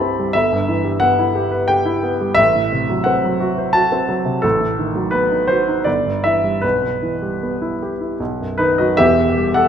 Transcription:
0.00 0.31 C2 soft
0.00 0.37 G2 soft
0.00 0.37 E3 soft
0.00 0.19 G3 soft
0.00 0.37 C4 soft
0.00 0.37 E4 soft
0.00 0.37 G4 soft
0.00 0.37 C5 soft
0.00 0.37 G5 medium
0.00 0.37 A5 medium
0.00 0.34 B5 medium
0.19 0.35 G3 soft
0.33 2.34 G1 medium
0.33 1.02 E5 medium
0.52 0.79 G2 soft
0.69 0.96 E3 soft
0.84 1.12 G3 soft
1.00 1.29 B3 soft
1.00 1.68 F#5 medium
1.19 1.46 E4 soft
1.35 1.62 G4 soft
1.52 1.79 B4 soft
1.68 1.96 G4 soft
1.68 2.37 G5 medium
1.85 2.13 E4 soft
2.03 2.31 B3 soft
2.21 2.38 G3 soft
2.35 4.40 A1 soft
2.35 3.06 E5 loud
2.55 2.83 A2 soft
2.72 3.00 C3 soft
2.90 3.17 F#3 soft
3.04 3.34 C4 soft
3.04 3.74 F#5 medium
3.24 3.51 F#3 soft
3.40 3.68 F#4 soft
3.58 3.86 C5 soft
3.73 4.03 F#4 soft
3.73 4.43 A5 medium
3.92 4.20 C4 soft
4.09 4.37 F#3 soft
4.25 4.43 C3 soft
4.42 5.82 A1 medium
4.42 5.13 A4 medium
4.61 4.89 A2 soft
4.79 5.07 D#3 soft
4.95 5.24 F#3 soft
5.11 5.42 B3 soft
5.11 5.48 B4 medium
5.31 5.60 D#4 soft
5.48 5.79 F#4 soft
5.48 5.85 C5 medium
5.68 5.87 D#4 soft
5.84 6.61 G1 soft
5.84 6.23 D5 medium
6.06 6.36 G2 soft
6.24 6.56 E3 soft
6.24 6.63 E5 medium
6.44 6.64 G3 soft
6.62 8.16 B1 soft
6.62 8.56 B4 medium
6.82 7.14 B2 soft
7.02 7.34 E3 soft
7.22 7.54 G3 soft
7.43 7.74 B3 soft
7.62 7.93 E4 soft
7.82 8.13 G4 soft
8.01 8.20 E4 soft
8.20 8.96 B1 soft
8.40 8.71 F#2 soft
8.58 8.91 D#3 soft
8.58 8.77 D#4 medium
8.58 8.78 B4 medium
8.78 8.99 F#3 soft
8.78 8.97 F#4 soft
8.78 8.98 D#5 medium
8.97 9.68 E1 medium
8.97 9.68 E2 medium
8.97 9.52 G4 medium
8.97 9.56 E5 medium
9.37 9.68 G3 soft
9.54 9.68 A4 medium
9.54 9.68 F#5 medium

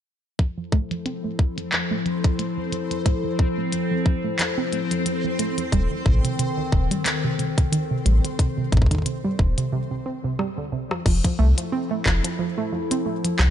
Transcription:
0.39 0.50 F3 medium
0.39 5.69 F3 medium
0.39 9.72 C4 medium
0.39 5.69 E4 medium
0.39 9.69 A4 medium
0.39 9.72 C5 medium
0.39 kick loud
0.39 closed hi-hat medium
0.58 0.66 F3 medium
0.72 0.83 A3 loud
0.72 kick loud
0.91 0.99 F3 medium
0.91 closed hi-hat medium
1.06 1.12 C4 medium
1.06 closed hi-hat medium
1.24 1.33 A3 medium
1.39 1.50 F3 medium
1.39 kick loud
1.58 1.66 F3 medium
1.58 closed hi-hat medium
1.72 1.83 F3 medium
1.72 clap loud
1.72 closed hi-hat medium
1.91 1.99 A3 loud
2.06 2.16 F3 medium
2.06 closed hi-hat soft
2.24 2.29 C4 medium
2.24 kick loud
2.24 closed hi-hat medium
2.39 2.50 A3 medium
2.39 closed hi-hat medium
2.58 2.66 F3 medium
2.72 2.83 F3 medium
2.72 closed hi-hat medium
2.91 2.99 F3 medium
2.91 closed hi-hat soft
3.06 3.16 A3 loud
3.06 kick loud
3.06 closed hi-hat medium
3.24 3.33 F3 medium
3.39 3.45 C4 medium
3.39 kick loud
3.58 3.66 A3 medium
3.72 3.83 F3 medium
3.72 closed hi-hat medium
3.91 3.99 F3 medium
4.06 4.16 F3 medium
4.06 kick loud
4.24 4.33 A3 loud
4.39 4.50 F3 medium
4.39 clap loud
4.39 closed hi-hat medium
4.58 4.63 C4 loud
4.72 4.83 A3 medium
4.72 closed hi-hat soft
4.91 4.99 F3 medium
4.91 closed hi-hat soft
5.06 5.16 F3 medium
5.06 closed hi-hat medium
5.25 5.33 F3 medium
5.39 5.50 A3 loud
5.39 closed hi-hat medium
5.58 5.66 F3 medium
5.58 closed hi-hat soft
5.72 5.86 D#1 loud
5.72 9.68 D#3 medium
5.72 5.79 G3 loud
5.72 9.68 C4 medium
5.72 kick loud
5.72 closed hi-hat medium
5.91 5.99 D#3 medium
6.06 6.20 A1 medium
6.06 6.16 C3 medium
6.06 kick loud
6.24 6.33 C3 medium
6.24 closed hi-hat medium
6.39 6.50 C3 medium
6.39 closed hi-hat medium
6.58 6.66 D#3 loud
6.72 6.86 D#1 medium
6.72 6.83 C3 medium
6.72 kick loud
6.91 6.96 G3 loud
6.91 closed hi-hat medium
7.05 7.16 D#3 medium
7.05 clap loud
7.05 closed hi-hat medium
7.24 7.33 C3 medium
7.39 7.50 C3 medium
7.39 closed hi-hat soft
7.58 7.66 C3 medium
7.58 kick loud
7.58 closed hi-hat medium
7.72 7.83 D#3 loud
7.72 closed hi-hat medium
7.91 7.99 C3 medium
8.06 8.20 A1 loud
8.06 8.12 G3 medium
8.06 closed hi-hat medium
8.24 8.33 D#3 medium
8.24 closed hi-hat medium
8.39 8.50 C3 medium
8.39 kick loud
8.39 closed hi-hat medium
8.58 8.66 C3 medium
8.72 8.86 A1 medium
8.72 8.83 C3 medium
8.72 kick loud
8.72 closed hi-hat soft
8.77 kick medium
8.82 kick medium
8.86 kick medium
8.91 8.99 D#3 medium
8.91 kick soft
8.91 closed hi-hat soft
8.95 kick soft
8.98 kick soft
9.02 9.16 C3 medium
9.02 kick soft
9.02 closed hi-hat medium
9.24 9.29 G3 loud
9.39 9.53 D#1 medium
9.39 9.50 D#3 medium
9.39 kick loud
9.58 9.66 C3 medium
9.58 closed hi-hat soft
9.72 9.83 C3 medium
9.91 9.99 C3 medium
10.06 10.12 C4 medium
10.24 10.33 C3 medium
10.39 10.50 G3 medium
10.39 cross-stick medium
10.58 10.66 D3 medium
10.72 10.83 C3 medium
10.91 10.99 F3 medium
10.91 cross-stick medium
11.06 11.20 F1 loud
11.06 11.16 F3 medium
11.06 13.50 F3 medium
11.06 13.50 E4 medium
11.06 13.50 A4 medium
11.06 kick loud
11.06 crash medium
11.24 11.33 F3 medium
11.24 kick medium
11.24 closed hi-hat soft
11.39 11.53 C2 medium
11.39 11.50 A3 loud
11.58 11.66 F3 medium
11.58 closed hi-hat medium
11.72 11.79 C4 loud
11.91 11.99 A3 medium
12.06 12.20 F1 medium
12.06 12.16 F3 medium
12.06 kick medium
12.06 clap loud
12.24 12.33 F3 medium
12.24 closed hi-hat medium
12.39 12.50 F3 medium
12.58 12.66 A3 loud
12.73 12.83 F3 medium
12.91 12.96 C4 loud
12.91 closed hi-hat medium
13.06 13.16 A3 medium
13.25 13.33 F3 medium
13.25 closed hi-hat medium
13.39 13.50 C2 loud
13.39 13.50 F3 medium
13.39 cross-stick medium
13.39 clap loud

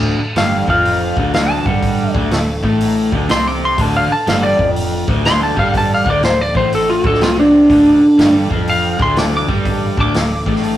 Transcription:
0.00 0.17 D1 medium
0.00 0.18 D2 medium
0.00 0.19 D3 medium
0.00 3.74 A3 medium
0.00 3.74 D4 medium
0.00 3.74 A4 medium
0.19 muted fingered electric bass stroke soft
0.19 muted overdriven electric guitar stroke medium
0.36 0.66 G1 medium
0.36 0.67 G2 medium
0.36 0.68 G3 medium
0.36 0.69 F5 medium
0.36 snare loud
0.36 open hi-hat soft
0.67 1.13 F1 medium
0.67 1.16 F2 medium
0.67 1.16 F3 medium
0.67 1.32 F5 medium
0.67 kick medium
0.85 open hi-hat soft
1.16 1.62 D1 medium
1.16 1.65 D2 medium
1.16 1.66 D3 medium
1.16 kick loud
1.34 1.51 F5 medium
1.34 snare loud
1.34 open hi-hat soft
1.51 1.66 A5 medium
1.66 2.11 G1 medium
1.66 2.14 G2 medium
1.66 2.14 G3 loud
1.66 2.14 F#5 medium
1.66 kick medium
1.82 kick loud
1.82 open hi-hat soft
2.14 2.30 D1 medium
2.14 2.31 D2 medium
2.14 2.32 D3 medium
2.14 kick loud
2.31 2.61 D1 medium
2.31 2.58 D2 medium
2.31 snare loud
2.31 open hi-hat soft
2.63 3.09 A1 loud
2.63 3.11 A2 medium
2.63 3.12 A3 medium
2.63 kick medium
2.81 open hi-hat medium
3.12 3.28 D1 medium
3.12 3.28 D2 medium
3.12 3.29 D3 medium
3.12 kick loud
3.29 3.75 C2 medium
3.29 3.77 C3 medium
3.29 3.78 C4 medium
3.29 3.48 C6 medium
3.29 snare loud
3.29 open hi-hat medium
3.48 3.62 D6 medium
3.65 3.81 C6 medium
3.78 4.08 D1 medium
3.78 4.09 D2 medium
3.78 4.10 D3 loud
3.78 7.66 A3 medium
3.78 7.66 D4 medium
3.78 7.66 A4 medium
3.78 7.66 F#5 medium
3.78 3.96 A5 medium
3.78 kick loud
3.78 open hi-hat medium
3.97 4.11 F5 medium
4.10 4.27 A5 medium
4.10 muted overdriven electric guitar stroke medium
4.10 muted fingered electric bass stroke soft
4.27 4.57 G1 medium
4.27 4.59 G2 medium
4.27 4.60 G3 loud
4.27 4.44 F5 medium
4.27 snare loud
4.27 open hi-hat medium
4.43 4.69 D5 medium
4.59 5.05 F1 medium
4.59 5.07 F2 medium
4.59 5.07 F3 medium
4.59 kick medium
4.76 open hi-hat medium
5.08 5.54 D1 medium
5.08 5.56 D2 medium
5.08 5.56 D3 medium
5.08 kick loud
5.25 5.41 C6 loud
5.25 snare loud
5.25 open hi-hat medium
5.43 5.58 A5 medium
5.56 6.02 G1 medium
5.56 6.05 G2 medium
5.56 6.05 G3 medium
5.56 5.74 F5 medium
5.56 kick medium
5.74 5.92 A5 medium
5.74 kick loud
5.74 open hi-hat medium
5.94 6.08 F5 medium
6.05 6.21 D1 medium
6.05 6.22 D2 medium
6.05 6.22 D3 medium
6.05 kick loud
6.10 6.24 D5 medium
6.22 6.52 D1 medium
6.22 6.48 D2 medium
6.22 6.41 C5 medium
6.22 snare loud
6.22 open hi-hat soft
6.41 6.56 D5 medium
6.55 7.00 A1 medium
6.55 7.03 A2 medium
6.55 7.03 A3 medium
6.55 6.72 C5 medium
6.55 kick loud
6.72 6.89 A4 medium
6.72 open hi-hat medium
6.90 7.05 F4 medium
7.04 7.20 D1 medium
7.04 7.20 D2 medium
7.04 7.21 D3 medium
7.04 7.21 A4 medium
7.04 kick loud
7.14 snare soft
7.20 7.66 C2 medium
7.20 7.69 C3 medium
7.20 7.70 C4 medium
7.20 7.38 F4 medium
7.20 snare loud
7.20 open hi-hat medium
7.40 8.33 D4 medium
7.70 7.99 D1 medium
7.70 8.01 D2 medium
7.70 8.01 D3 medium
7.70 7.86 A#3 medium
7.70 7.86 D#4 medium
7.70 7.86 G4 medium
7.70 kick loud
7.70 open hi-hat medium
7.85 10.77 A3 medium
7.85 10.77 D4 medium
7.85 10.77 A4 medium
8.01 muted fingered electric bass stroke soft
8.01 muted overdriven electric guitar stroke medium
8.18 8.48 G1 medium
8.18 8.49 G2 medium
8.18 8.50 G3 loud
8.18 snare loud
8.18 open hi-hat medium
8.50 8.96 F1 medium
8.50 8.98 F2 medium
8.50 8.99 F3 medium
8.50 kick medium
8.67 9.00 F5 medium
8.67 open hi-hat medium
8.99 9.45 D1 medium
8.99 9.47 D2 medium
8.99 9.48 D3 medium
8.99 9.19 C6 medium
8.99 kick loud
9.16 9.34 D6 medium
9.16 snare loud
9.16 open hi-hat medium
9.37 9.98 D6 medium
9.48 9.94 G1 medium
9.48 9.96 G2 medium
9.48 9.97 G3 medium
9.48 kick medium
9.65 kick medium
9.65 open hi-hat medium
9.98 10.13 D1 medium
9.98 10.14 D2 medium
9.98 10.15 D3 medium
9.98 10.77 D6 loud
9.98 kick loud
10.14 10.44 D1 medium
10.14 10.41 D2 medium
10.14 snare loud
10.14 open hi-hat medium
10.46 10.77 A1 loud
10.46 10.77 A2 medium
10.46 10.77 A3 medium
10.46 kick medium
10.56 snare soft
10.63 open hi-hat medium

